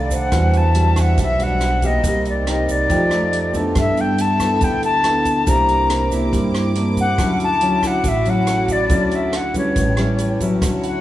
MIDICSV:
0, 0, Header, 1, 7, 480
1, 0, Start_track
1, 0, Key_signature, 2, "major"
1, 0, Tempo, 428878
1, 362, Time_signature, 4, 2, 24, 8
1, 12320, End_track
2, 0, Start_track
2, 0, Title_t, "Flute"
2, 0, Program_c, 0, 73
2, 0, Note_on_c, 0, 74, 70
2, 166, Note_on_c, 0, 78, 83
2, 183, Note_off_c, 0, 74, 0
2, 642, Note_on_c, 0, 81, 79
2, 659, Note_off_c, 0, 78, 0
2, 1126, Note_on_c, 0, 78, 75
2, 1142, Note_off_c, 0, 81, 0
2, 1343, Note_off_c, 0, 78, 0
2, 1368, Note_on_c, 0, 76, 83
2, 1603, Note_on_c, 0, 78, 86
2, 1620, Note_off_c, 0, 76, 0
2, 2085, Note_on_c, 0, 75, 80
2, 2102, Note_off_c, 0, 78, 0
2, 2543, Note_off_c, 0, 75, 0
2, 2567, Note_on_c, 0, 74, 67
2, 2791, Note_on_c, 0, 75, 78
2, 2808, Note_off_c, 0, 74, 0
2, 3039, Note_on_c, 0, 74, 85
2, 3056, Note_off_c, 0, 75, 0
2, 3981, Note_off_c, 0, 74, 0
2, 4240, Note_on_c, 0, 76, 91
2, 4485, Note_on_c, 0, 79, 78
2, 4502, Note_off_c, 0, 76, 0
2, 4715, Note_on_c, 0, 81, 83
2, 4732, Note_off_c, 0, 79, 0
2, 5193, Note_on_c, 0, 79, 90
2, 5210, Note_off_c, 0, 81, 0
2, 5418, Note_off_c, 0, 79, 0
2, 5429, Note_on_c, 0, 81, 98
2, 6144, Note_on_c, 0, 82, 93
2, 6161, Note_off_c, 0, 81, 0
2, 6854, Note_off_c, 0, 82, 0
2, 7839, Note_on_c, 0, 78, 90
2, 8269, Note_off_c, 0, 78, 0
2, 8325, Note_on_c, 0, 81, 84
2, 8807, Note_on_c, 0, 78, 82
2, 8824, Note_off_c, 0, 81, 0
2, 9047, Note_on_c, 0, 76, 81
2, 9064, Note_off_c, 0, 78, 0
2, 9288, Note_on_c, 0, 78, 94
2, 9305, Note_off_c, 0, 76, 0
2, 9763, Note_on_c, 0, 74, 85
2, 9780, Note_off_c, 0, 78, 0
2, 10244, Note_on_c, 0, 76, 70
2, 10261, Note_off_c, 0, 74, 0
2, 10476, Note_on_c, 0, 78, 77
2, 10493, Note_off_c, 0, 76, 0
2, 10700, Note_off_c, 0, 78, 0
2, 10725, Note_on_c, 0, 73, 62
2, 11619, Note_off_c, 0, 73, 0
2, 12156, Note_on_c, 0, 78, 78
2, 12320, Note_off_c, 0, 78, 0
2, 12320, End_track
3, 0, Start_track
3, 0, Title_t, "Vibraphone"
3, 0, Program_c, 1, 11
3, 0, Control_c, 1, 64, 127
3, 0, Note_on_c, 1, 77, 53
3, 128, Note_on_c, 1, 72, 48
3, 375, Control_c, 1, 64, 0
3, 385, Note_off_c, 1, 77, 0
3, 556, Control_c, 1, 64, 127
3, 571, Note_off_c, 1, 72, 0
3, 2282, Note_on_c, 1, 67, 35
3, 2296, Control_c, 1, 64, 0
3, 2495, Control_c, 1, 64, 127
3, 2766, Note_on_c, 1, 63, 37
3, 3258, Control_c, 1, 64, 0
3, 3392, Note_off_c, 1, 67, 0
3, 3439, Note_off_c, 1, 63, 0
3, 3479, Control_c, 1, 64, 127
3, 3974, Note_on_c, 1, 62, 34
3, 4217, Control_c, 1, 64, 0
3, 4383, Control_c, 1, 64, 127
3, 4415, Note_off_c, 1, 62, 0
3, 6123, Note_on_c, 1, 67, 41
3, 6134, Control_c, 1, 64, 0
3, 6355, Control_c, 1, 64, 127
3, 7233, Note_off_c, 1, 67, 0
3, 8056, Control_c, 1, 64, 0
3, 8242, Control_c, 1, 64, 127
3, 8994, Note_on_c, 1, 66, 39
3, 10109, Note_off_c, 1, 66, 0
3, 10679, Note_on_c, 1, 71, 39
3, 10938, Control_c, 1, 64, 0
3, 11128, Note_off_c, 1, 71, 0
3, 11128, Control_c, 1, 64, 127
3, 11900, Control_c, 1, 64, 0
3, 12089, Control_c, 1, 64, 127
3, 12129, Note_on_c, 1, 78, 55
3, 12320, Note_off_c, 1, 78, 0
3, 12320, End_track
4, 0, Start_track
4, 0, Title_t, "Violin section"
4, 0, Program_c, 2, 48
4, 0, Note_on_c, 2, 55, 69
4, 0, Note_on_c, 2, 57, 69
4, 0, Note_on_c, 2, 69, 66
4, 0, Note_on_c, 2, 74, 78
4, 337, Note_off_c, 2, 74, 0
4, 342, Note_off_c, 2, 69, 0
4, 364, Note_on_c, 2, 66, 67
4, 364, Note_on_c, 2, 76, 83
4, 2231, Note_off_c, 2, 57, 0
4, 2264, Note_off_c, 2, 66, 0
4, 2264, Note_off_c, 2, 76, 0
4, 2288, Note_on_c, 2, 60, 67
4, 2288, Note_on_c, 2, 63, 76
4, 2288, Note_on_c, 2, 70, 62
4, 3193, Note_off_c, 2, 55, 0
4, 3235, Note_off_c, 2, 60, 0
4, 3235, Note_off_c, 2, 70, 0
4, 3254, Note_on_c, 2, 65, 52
4, 3254, Note_on_c, 2, 67, 63
4, 3259, Note_on_c, 2, 57, 60
4, 4186, Note_off_c, 2, 63, 0
4, 4199, Note_off_c, 2, 65, 0
4, 4201, Note_off_c, 2, 57, 0
4, 4208, Note_on_c, 2, 69, 68
4, 4208, Note_on_c, 2, 76, 85
4, 4209, Note_on_c, 2, 59, 72
4, 6100, Note_off_c, 2, 67, 0
4, 6106, Note_off_c, 2, 76, 0
4, 6107, Note_off_c, 2, 59, 0
4, 6107, Note_off_c, 2, 69, 0
4, 6132, Note_on_c, 2, 64, 72
4, 6135, Note_on_c, 2, 60, 72
4, 6135, Note_on_c, 2, 86, 80
4, 6136, Note_on_c, 2, 70, 65
4, 8030, Note_off_c, 2, 60, 0
4, 8031, Note_off_c, 2, 70, 0
4, 8039, Note_on_c, 2, 57, 75
4, 8039, Note_on_c, 2, 66, 67
4, 10885, Note_off_c, 2, 86, 0
4, 10893, Note_off_c, 2, 57, 0
4, 10893, Note_off_c, 2, 66, 0
4, 10927, Note_on_c, 2, 73, 61
4, 10928, Note_on_c, 2, 57, 64
4, 10929, Note_on_c, 2, 67, 57
4, 11843, Note_off_c, 2, 64, 0
4, 11875, Note_off_c, 2, 73, 0
4, 11876, Note_off_c, 2, 57, 0
4, 11876, Note_off_c, 2, 67, 0
4, 11888, Note_on_c, 2, 76, 85
4, 11889, Note_on_c, 2, 73, 73
4, 11890, Note_on_c, 2, 64, 69
4, 11891, Note_on_c, 2, 66, 72
4, 12320, Note_off_c, 2, 64, 0
4, 12320, Note_off_c, 2, 66, 0
4, 12320, Note_off_c, 2, 73, 0
4, 12320, Note_off_c, 2, 76, 0
4, 12320, End_track
5, 0, Start_track
5, 0, Title_t, "Nylon-string guitar"
5, 0, Program_c, 3, 24
5, 0, Note_on_c, 3, 48, 45
5, 0, Note_on_c, 3, 51, 53
5, 0, Note_on_c, 3, 57, 49
5, 0, Note_on_c, 3, 62, 61
5, 320, Note_off_c, 3, 51, 0
5, 324, Note_off_c, 3, 57, 0
5, 325, Note_off_c, 3, 62, 0
5, 337, Note_off_c, 3, 48, 0
5, 355, Note_on_c, 3, 52, 57
5, 362, Note_on_c, 3, 55, 59
5, 369, Note_on_c, 3, 62, 53
5, 369, Note_on_c, 3, 66, 54
5, 670, Note_off_c, 3, 55, 0
5, 671, Note_off_c, 3, 62, 0
5, 674, Note_off_c, 3, 66, 0
5, 835, Note_on_c, 3, 55, 53
5, 842, Note_on_c, 3, 62, 46
5, 846, Note_on_c, 3, 66, 51
5, 1296, Note_off_c, 3, 52, 0
5, 1315, Note_off_c, 3, 55, 0
5, 1317, Note_on_c, 3, 47, 47
5, 1319, Note_off_c, 3, 62, 0
5, 1319, Note_off_c, 3, 66, 0
5, 1558, Note_on_c, 3, 55, 48
5, 1566, Note_on_c, 3, 62, 55
5, 1571, Note_on_c, 3, 66, 57
5, 2001, Note_off_c, 3, 55, 0
5, 2006, Note_off_c, 3, 62, 0
5, 2007, Note_off_c, 3, 66, 0
5, 2041, Note_on_c, 3, 58, 53
5, 2047, Note_on_c, 3, 63, 51
5, 2054, Note_on_c, 3, 67, 57
5, 2255, Note_off_c, 3, 47, 0
5, 2282, Note_on_c, 3, 48, 53
5, 2723, Note_off_c, 3, 58, 0
5, 2726, Note_off_c, 3, 63, 0
5, 2729, Note_off_c, 3, 67, 0
5, 2761, Note_on_c, 3, 58, 41
5, 2766, Note_on_c, 3, 63, 44
5, 2769, Note_on_c, 3, 67, 54
5, 3218, Note_off_c, 3, 48, 0
5, 3222, Note_off_c, 3, 58, 0
5, 3224, Note_off_c, 3, 63, 0
5, 3226, Note_off_c, 3, 67, 0
5, 3243, Note_on_c, 3, 53, 46
5, 3243, Note_on_c, 3, 57, 41
5, 3250, Note_on_c, 3, 63, 45
5, 3253, Note_on_c, 3, 67, 56
5, 3444, Note_off_c, 3, 57, 0
5, 3446, Note_off_c, 3, 63, 0
5, 3449, Note_off_c, 3, 67, 0
5, 3487, Note_on_c, 3, 57, 56
5, 3491, Note_on_c, 3, 63, 52
5, 3495, Note_on_c, 3, 67, 52
5, 3926, Note_off_c, 3, 57, 0
5, 3927, Note_off_c, 3, 63, 0
5, 3930, Note_off_c, 3, 67, 0
5, 3958, Note_on_c, 3, 59, 49
5, 3963, Note_on_c, 3, 64, 50
5, 3969, Note_on_c, 3, 69, 54
5, 4179, Note_off_c, 3, 53, 0
5, 4205, Note_on_c, 3, 55, 53
5, 4642, Note_off_c, 3, 59, 0
5, 4644, Note_off_c, 3, 64, 0
5, 4647, Note_off_c, 3, 69, 0
5, 4920, Note_on_c, 3, 59, 52
5, 4927, Note_on_c, 3, 64, 53
5, 4928, Note_on_c, 3, 69, 61
5, 5140, Note_off_c, 3, 55, 0
5, 5162, Note_on_c, 3, 50, 47
5, 5603, Note_off_c, 3, 59, 0
5, 5605, Note_off_c, 3, 64, 0
5, 5607, Note_off_c, 3, 69, 0
5, 5641, Note_on_c, 3, 59, 53
5, 5645, Note_on_c, 3, 64, 46
5, 5650, Note_on_c, 3, 69, 52
5, 6083, Note_off_c, 3, 59, 0
5, 6086, Note_off_c, 3, 64, 0
5, 6088, Note_off_c, 3, 69, 0
5, 6098, Note_off_c, 3, 50, 0
5, 6116, Note_on_c, 3, 48, 50
5, 6119, Note_on_c, 3, 58, 54
5, 6125, Note_on_c, 3, 64, 59
5, 6126, Note_on_c, 3, 62, 59
5, 6802, Note_off_c, 3, 58, 0
5, 6804, Note_off_c, 3, 62, 0
5, 6806, Note_off_c, 3, 64, 0
5, 6842, Note_on_c, 3, 58, 49
5, 6846, Note_on_c, 3, 62, 59
5, 6850, Note_on_c, 3, 64, 61
5, 7056, Note_off_c, 3, 48, 0
5, 7086, Note_on_c, 3, 55, 47
5, 7525, Note_off_c, 3, 58, 0
5, 7525, Note_off_c, 3, 62, 0
5, 7528, Note_off_c, 3, 64, 0
5, 7563, Note_on_c, 3, 58, 51
5, 7569, Note_on_c, 3, 62, 51
5, 7573, Note_on_c, 3, 64, 54
5, 7873, Note_off_c, 3, 58, 0
5, 7876, Note_off_c, 3, 62, 0
5, 7877, Note_off_c, 3, 64, 0
5, 8021, Note_off_c, 3, 55, 0
5, 8039, Note_on_c, 3, 50, 52
5, 8045, Note_on_c, 3, 54, 52
5, 8048, Note_on_c, 3, 61, 56
5, 8051, Note_on_c, 3, 64, 59
5, 8352, Note_off_c, 3, 54, 0
5, 8355, Note_off_c, 3, 61, 0
5, 8355, Note_off_c, 3, 64, 0
5, 8523, Note_on_c, 3, 54, 51
5, 8529, Note_on_c, 3, 61, 45
5, 8531, Note_on_c, 3, 64, 50
5, 8978, Note_off_c, 3, 50, 0
5, 8997, Note_on_c, 3, 45, 51
5, 9001, Note_off_c, 3, 54, 0
5, 9003, Note_off_c, 3, 61, 0
5, 9005, Note_off_c, 3, 64, 0
5, 9248, Note_on_c, 3, 54, 53
5, 9249, Note_on_c, 3, 61, 53
5, 9258, Note_on_c, 3, 64, 56
5, 9928, Note_off_c, 3, 54, 0
5, 9928, Note_off_c, 3, 61, 0
5, 9933, Note_off_c, 3, 64, 0
5, 9937, Note_off_c, 3, 45, 0
5, 9966, Note_on_c, 3, 50, 55
5, 9967, Note_on_c, 3, 54, 50
5, 9971, Note_on_c, 3, 61, 58
5, 9975, Note_on_c, 3, 64, 59
5, 10442, Note_off_c, 3, 54, 0
5, 10444, Note_off_c, 3, 61, 0
5, 10447, Note_off_c, 3, 64, 0
5, 10687, Note_on_c, 3, 55, 55
5, 10695, Note_on_c, 3, 61, 49
5, 10700, Note_on_c, 3, 64, 54
5, 10901, Note_off_c, 3, 50, 0
5, 10930, Note_on_c, 3, 45, 45
5, 11127, Note_off_c, 3, 55, 0
5, 11130, Note_off_c, 3, 61, 0
5, 11133, Note_off_c, 3, 64, 0
5, 11173, Note_on_c, 3, 55, 54
5, 11179, Note_on_c, 3, 61, 54
5, 11180, Note_on_c, 3, 64, 58
5, 11610, Note_off_c, 3, 55, 0
5, 11611, Note_off_c, 3, 61, 0
5, 11613, Note_off_c, 3, 64, 0
5, 11656, Note_on_c, 3, 54, 54
5, 11661, Note_on_c, 3, 64, 56
5, 11662, Note_on_c, 3, 61, 55
5, 11862, Note_off_c, 3, 45, 0
5, 11893, Note_on_c, 3, 50, 53
5, 12320, Note_off_c, 3, 50, 0
5, 12320, Note_off_c, 3, 54, 0
5, 12320, Note_off_c, 3, 61, 0
5, 12320, Note_off_c, 3, 64, 0
5, 12320, End_track
6, 0, Start_track
6, 0, Title_t, "Upright bass"
6, 0, Program_c, 4, 32
6, 0, Note_on_c, 4, 36, 81
6, 314, Note_off_c, 4, 36, 0
6, 357, Note_on_c, 4, 40, 98
6, 1275, Note_off_c, 4, 40, 0
6, 1319, Note_on_c, 4, 35, 81
6, 2236, Note_off_c, 4, 35, 0
6, 2278, Note_on_c, 4, 36, 90
6, 3195, Note_off_c, 4, 36, 0
6, 3242, Note_on_c, 4, 41, 77
6, 4157, Note_off_c, 4, 41, 0
6, 4203, Note_on_c, 4, 43, 85
6, 5118, Note_off_c, 4, 43, 0
6, 5158, Note_on_c, 4, 38, 88
6, 6076, Note_off_c, 4, 38, 0
6, 6119, Note_on_c, 4, 36, 88
6, 7036, Note_off_c, 4, 36, 0
6, 7080, Note_on_c, 4, 43, 84
6, 7997, Note_off_c, 4, 43, 0
6, 8037, Note_on_c, 4, 38, 90
6, 8956, Note_off_c, 4, 38, 0
6, 8994, Note_on_c, 4, 33, 84
6, 9914, Note_off_c, 4, 33, 0
6, 9957, Note_on_c, 4, 38, 91
6, 10876, Note_off_c, 4, 38, 0
6, 10921, Note_on_c, 4, 33, 79
6, 11837, Note_off_c, 4, 33, 0
6, 11882, Note_on_c, 4, 38, 94
6, 12320, Note_off_c, 4, 38, 0
6, 12320, End_track
7, 0, Start_track
7, 0, Title_t, "Drums"
7, 119, Note_on_c, 9, 36, 24
7, 123, Note_on_c, 9, 82, 55
7, 125, Note_on_c, 9, 42, 24
7, 231, Note_off_c, 9, 36, 0
7, 235, Note_off_c, 9, 82, 0
7, 237, Note_off_c, 9, 42, 0
7, 356, Note_on_c, 9, 37, 53
7, 356, Note_on_c, 9, 42, 40
7, 359, Note_on_c, 9, 36, 54
7, 361, Note_on_c, 9, 82, 56
7, 468, Note_off_c, 9, 37, 0
7, 468, Note_off_c, 9, 42, 0
7, 471, Note_off_c, 9, 36, 0
7, 473, Note_off_c, 9, 82, 0
7, 598, Note_on_c, 9, 42, 21
7, 608, Note_on_c, 9, 82, 22
7, 710, Note_off_c, 9, 42, 0
7, 720, Note_off_c, 9, 82, 0
7, 835, Note_on_c, 9, 42, 45
7, 947, Note_off_c, 9, 42, 0
7, 1076, Note_on_c, 9, 37, 54
7, 1076, Note_on_c, 9, 42, 26
7, 1077, Note_on_c, 9, 36, 21
7, 1086, Note_on_c, 9, 82, 53
7, 1188, Note_off_c, 9, 37, 0
7, 1188, Note_off_c, 9, 42, 0
7, 1189, Note_off_c, 9, 36, 0
7, 1198, Note_off_c, 9, 82, 0
7, 1316, Note_on_c, 9, 42, 41
7, 1318, Note_on_c, 9, 36, 56
7, 1327, Note_on_c, 9, 82, 57
7, 1428, Note_off_c, 9, 42, 0
7, 1430, Note_off_c, 9, 36, 0
7, 1439, Note_off_c, 9, 82, 0
7, 1562, Note_on_c, 9, 42, 27
7, 1564, Note_on_c, 9, 82, 25
7, 1674, Note_off_c, 9, 42, 0
7, 1676, Note_off_c, 9, 82, 0
7, 1799, Note_on_c, 9, 37, 51
7, 1799, Note_on_c, 9, 42, 41
7, 1801, Note_on_c, 9, 82, 53
7, 1911, Note_off_c, 9, 37, 0
7, 1911, Note_off_c, 9, 42, 0
7, 1913, Note_off_c, 9, 82, 0
7, 2039, Note_on_c, 9, 42, 26
7, 2040, Note_on_c, 9, 36, 24
7, 2045, Note_on_c, 9, 82, 58
7, 2151, Note_off_c, 9, 42, 0
7, 2152, Note_off_c, 9, 36, 0
7, 2157, Note_off_c, 9, 82, 0
7, 2280, Note_on_c, 9, 36, 57
7, 2282, Note_on_c, 9, 42, 41
7, 2287, Note_on_c, 9, 82, 60
7, 2392, Note_off_c, 9, 36, 0
7, 2394, Note_off_c, 9, 42, 0
7, 2399, Note_off_c, 9, 82, 0
7, 2522, Note_on_c, 9, 42, 23
7, 2527, Note_on_c, 9, 82, 23
7, 2634, Note_off_c, 9, 42, 0
7, 2639, Note_off_c, 9, 82, 0
7, 2765, Note_on_c, 9, 37, 53
7, 2765, Note_on_c, 9, 42, 42
7, 2876, Note_off_c, 9, 37, 0
7, 2876, Note_off_c, 9, 42, 0
7, 3002, Note_on_c, 9, 36, 21
7, 3006, Note_on_c, 9, 42, 23
7, 3011, Note_on_c, 9, 82, 55
7, 3114, Note_off_c, 9, 36, 0
7, 3118, Note_off_c, 9, 42, 0
7, 3123, Note_off_c, 9, 82, 0
7, 3241, Note_on_c, 9, 36, 51
7, 3242, Note_on_c, 9, 42, 35
7, 3251, Note_on_c, 9, 82, 54
7, 3353, Note_off_c, 9, 36, 0
7, 3354, Note_off_c, 9, 42, 0
7, 3363, Note_off_c, 9, 82, 0
7, 3479, Note_on_c, 9, 37, 54
7, 3479, Note_on_c, 9, 42, 23
7, 3488, Note_on_c, 9, 82, 23
7, 3591, Note_off_c, 9, 37, 0
7, 3591, Note_off_c, 9, 42, 0
7, 3600, Note_off_c, 9, 82, 0
7, 3725, Note_on_c, 9, 42, 37
7, 3837, Note_off_c, 9, 42, 0
7, 3962, Note_on_c, 9, 36, 22
7, 3963, Note_on_c, 9, 82, 57
7, 3966, Note_on_c, 9, 42, 23
7, 4074, Note_off_c, 9, 36, 0
7, 4074, Note_off_c, 9, 82, 0
7, 4078, Note_off_c, 9, 42, 0
7, 4201, Note_on_c, 9, 37, 54
7, 4201, Note_on_c, 9, 42, 39
7, 4203, Note_on_c, 9, 36, 48
7, 4208, Note_on_c, 9, 82, 56
7, 4313, Note_off_c, 9, 37, 0
7, 4313, Note_off_c, 9, 42, 0
7, 4315, Note_off_c, 9, 36, 0
7, 4320, Note_off_c, 9, 82, 0
7, 4445, Note_on_c, 9, 82, 23
7, 4446, Note_on_c, 9, 42, 23
7, 4557, Note_off_c, 9, 82, 0
7, 4558, Note_off_c, 9, 42, 0
7, 4681, Note_on_c, 9, 42, 42
7, 4688, Note_on_c, 9, 82, 49
7, 4793, Note_off_c, 9, 42, 0
7, 4800, Note_off_c, 9, 82, 0
7, 4922, Note_on_c, 9, 36, 19
7, 4922, Note_on_c, 9, 37, 54
7, 4922, Note_on_c, 9, 42, 23
7, 4926, Note_on_c, 9, 82, 59
7, 5034, Note_off_c, 9, 36, 0
7, 5034, Note_off_c, 9, 37, 0
7, 5034, Note_off_c, 9, 42, 0
7, 5038, Note_off_c, 9, 82, 0
7, 5157, Note_on_c, 9, 42, 38
7, 5161, Note_on_c, 9, 36, 48
7, 5164, Note_on_c, 9, 82, 57
7, 5269, Note_off_c, 9, 42, 0
7, 5273, Note_off_c, 9, 36, 0
7, 5276, Note_off_c, 9, 82, 0
7, 5401, Note_on_c, 9, 42, 27
7, 5409, Note_on_c, 9, 82, 24
7, 5513, Note_off_c, 9, 42, 0
7, 5521, Note_off_c, 9, 82, 0
7, 5639, Note_on_c, 9, 37, 53
7, 5639, Note_on_c, 9, 42, 43
7, 5751, Note_off_c, 9, 37, 0
7, 5751, Note_off_c, 9, 42, 0
7, 5878, Note_on_c, 9, 42, 27
7, 5880, Note_on_c, 9, 36, 22
7, 5886, Note_on_c, 9, 82, 65
7, 5990, Note_off_c, 9, 42, 0
7, 5992, Note_off_c, 9, 36, 0
7, 5998, Note_off_c, 9, 82, 0
7, 6122, Note_on_c, 9, 36, 54
7, 6122, Note_on_c, 9, 42, 42
7, 6124, Note_on_c, 9, 82, 60
7, 6234, Note_off_c, 9, 36, 0
7, 6234, Note_off_c, 9, 42, 0
7, 6236, Note_off_c, 9, 82, 0
7, 6364, Note_on_c, 9, 42, 24
7, 6369, Note_on_c, 9, 82, 23
7, 6476, Note_off_c, 9, 42, 0
7, 6481, Note_off_c, 9, 82, 0
7, 6601, Note_on_c, 9, 37, 58
7, 6601, Note_on_c, 9, 42, 43
7, 6713, Note_off_c, 9, 37, 0
7, 6713, Note_off_c, 9, 42, 0
7, 6843, Note_on_c, 9, 36, 21
7, 6846, Note_on_c, 9, 42, 25
7, 6846, Note_on_c, 9, 82, 53
7, 6955, Note_off_c, 9, 36, 0
7, 6958, Note_off_c, 9, 42, 0
7, 6958, Note_off_c, 9, 82, 0
7, 7083, Note_on_c, 9, 36, 51
7, 7086, Note_on_c, 9, 42, 35
7, 7092, Note_on_c, 9, 82, 52
7, 7195, Note_off_c, 9, 36, 0
7, 7197, Note_off_c, 9, 42, 0
7, 7204, Note_off_c, 9, 82, 0
7, 7324, Note_on_c, 9, 37, 59
7, 7324, Note_on_c, 9, 42, 25
7, 7332, Note_on_c, 9, 82, 26
7, 7436, Note_off_c, 9, 37, 0
7, 7436, Note_off_c, 9, 42, 0
7, 7444, Note_off_c, 9, 82, 0
7, 7559, Note_on_c, 9, 42, 36
7, 7671, Note_off_c, 9, 42, 0
7, 7800, Note_on_c, 9, 36, 22
7, 7801, Note_on_c, 9, 42, 23
7, 7805, Note_on_c, 9, 82, 59
7, 7912, Note_off_c, 9, 36, 0
7, 7913, Note_off_c, 9, 42, 0
7, 7917, Note_off_c, 9, 82, 0
7, 8039, Note_on_c, 9, 36, 59
7, 8039, Note_on_c, 9, 37, 51
7, 8039, Note_on_c, 9, 42, 37
7, 8051, Note_on_c, 9, 82, 59
7, 8151, Note_off_c, 9, 36, 0
7, 8151, Note_off_c, 9, 37, 0
7, 8151, Note_off_c, 9, 42, 0
7, 8163, Note_off_c, 9, 82, 0
7, 8280, Note_on_c, 9, 42, 24
7, 8288, Note_on_c, 9, 82, 22
7, 8392, Note_off_c, 9, 42, 0
7, 8400, Note_off_c, 9, 82, 0
7, 8515, Note_on_c, 9, 42, 43
7, 8627, Note_off_c, 9, 42, 0
7, 8758, Note_on_c, 9, 36, 22
7, 8760, Note_on_c, 9, 37, 51
7, 8760, Note_on_c, 9, 42, 22
7, 8767, Note_on_c, 9, 82, 57
7, 8870, Note_off_c, 9, 36, 0
7, 8872, Note_off_c, 9, 37, 0
7, 8872, Note_off_c, 9, 42, 0
7, 8879, Note_off_c, 9, 82, 0
7, 8997, Note_on_c, 9, 42, 37
7, 8998, Note_on_c, 9, 36, 51
7, 9004, Note_on_c, 9, 82, 51
7, 9109, Note_off_c, 9, 36, 0
7, 9109, Note_off_c, 9, 42, 0
7, 9116, Note_off_c, 9, 82, 0
7, 9237, Note_on_c, 9, 42, 23
7, 9245, Note_on_c, 9, 82, 23
7, 9349, Note_off_c, 9, 42, 0
7, 9357, Note_off_c, 9, 82, 0
7, 9478, Note_on_c, 9, 37, 51
7, 9478, Note_on_c, 9, 42, 39
7, 9485, Note_on_c, 9, 82, 48
7, 9590, Note_off_c, 9, 37, 0
7, 9590, Note_off_c, 9, 42, 0
7, 9597, Note_off_c, 9, 82, 0
7, 9717, Note_on_c, 9, 42, 25
7, 9718, Note_on_c, 9, 36, 23
7, 9727, Note_on_c, 9, 82, 63
7, 9829, Note_off_c, 9, 42, 0
7, 9830, Note_off_c, 9, 36, 0
7, 9839, Note_off_c, 9, 82, 0
7, 9954, Note_on_c, 9, 42, 38
7, 9958, Note_on_c, 9, 36, 53
7, 9968, Note_on_c, 9, 82, 59
7, 10066, Note_off_c, 9, 42, 0
7, 10070, Note_off_c, 9, 36, 0
7, 10080, Note_off_c, 9, 82, 0
7, 10199, Note_on_c, 9, 42, 25
7, 10213, Note_on_c, 9, 82, 24
7, 10311, Note_off_c, 9, 42, 0
7, 10325, Note_off_c, 9, 82, 0
7, 10440, Note_on_c, 9, 37, 55
7, 10440, Note_on_c, 9, 42, 48
7, 10551, Note_off_c, 9, 37, 0
7, 10551, Note_off_c, 9, 42, 0
7, 10679, Note_on_c, 9, 42, 25
7, 10681, Note_on_c, 9, 36, 23
7, 10693, Note_on_c, 9, 82, 59
7, 10791, Note_off_c, 9, 42, 0
7, 10793, Note_off_c, 9, 36, 0
7, 10805, Note_off_c, 9, 82, 0
7, 10921, Note_on_c, 9, 42, 40
7, 10922, Note_on_c, 9, 36, 52
7, 10935, Note_on_c, 9, 82, 58
7, 11033, Note_off_c, 9, 42, 0
7, 11034, Note_off_c, 9, 36, 0
7, 11047, Note_off_c, 9, 82, 0
7, 11157, Note_on_c, 9, 37, 51
7, 11157, Note_on_c, 9, 42, 24
7, 11173, Note_on_c, 9, 82, 23
7, 11269, Note_off_c, 9, 37, 0
7, 11269, Note_off_c, 9, 42, 0
7, 11285, Note_off_c, 9, 82, 0
7, 11398, Note_on_c, 9, 42, 34
7, 11412, Note_on_c, 9, 82, 52
7, 11510, Note_off_c, 9, 42, 0
7, 11524, Note_off_c, 9, 82, 0
7, 11643, Note_on_c, 9, 36, 22
7, 11644, Note_on_c, 9, 42, 25
7, 11653, Note_on_c, 9, 82, 61
7, 11755, Note_off_c, 9, 36, 0
7, 11756, Note_off_c, 9, 42, 0
7, 11765, Note_off_c, 9, 82, 0
7, 11884, Note_on_c, 9, 36, 58
7, 11884, Note_on_c, 9, 37, 51
7, 11884, Note_on_c, 9, 42, 42
7, 11896, Note_on_c, 9, 82, 61
7, 11996, Note_off_c, 9, 36, 0
7, 11996, Note_off_c, 9, 37, 0
7, 11996, Note_off_c, 9, 42, 0
7, 12008, Note_off_c, 9, 82, 0
7, 12125, Note_on_c, 9, 42, 23
7, 12136, Note_on_c, 9, 82, 22
7, 12237, Note_off_c, 9, 42, 0
7, 12248, Note_off_c, 9, 82, 0
7, 12320, End_track
0, 0, End_of_file